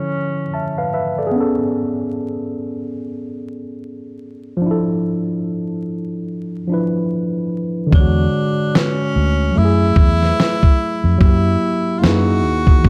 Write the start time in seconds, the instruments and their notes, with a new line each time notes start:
Already playing: tine electric piano D3 F3 E4 A4, tenor saxophone C#4
0.54 tine electric piano E5 A5
0.78 tine electric piano B4 F5
0.94 tine electric piano B4 E5
1.18 tine electric piano A4 D5
1.27 tine electric piano G#4
1.31 tine electric piano B3
1.36 tine electric piano C#4
1.40 tine electric piano A4
4.57 tine electric piano F3
4.62 tine electric piano D4
4.66 tine electric piano E4
4.71 tine electric piano A4
6.67 tine electric piano F3 D4
6.72 tine electric piano E4 B4
7.87 tine electric piano D3
7.91 fingered electric bass E2, tine electric piano G#3, tenor saxophone D4, kick
7.95 tine electric piano C#5
8.00 tine electric piano F#4
8.75 tenor saxophone C#4, snare
9.16 fingered electric bass D2
9.51 tine electric piano F#3
9.56 fingered electric bass F#2, tine electric piano A3, tenor saxophone E4
9.60 tine electric piano E4
9.65 tine electric piano G#4
9.96 fingered electric bass E2, kick
10.23 snare
10.40 snare
10.63 kick
11.04 fingered electric bass F2
11.18 fingered electric bass F#2, tine electric piano F#3 A#3, tenor saxophone E4, kick
11.23 tine electric piano E4 G4
11.99 tine electric piano A#3 E4, tenor saxophone F4
12.03 fingered electric bass F#2, tine electric piano D#4 G#4, tenor saxophone F#4, snare
12.44 fingered electric bass D#2
12.67 kick
12.78 tine electric piano D#3
12.83 fingered electric bass B1, tine electric piano A3, kick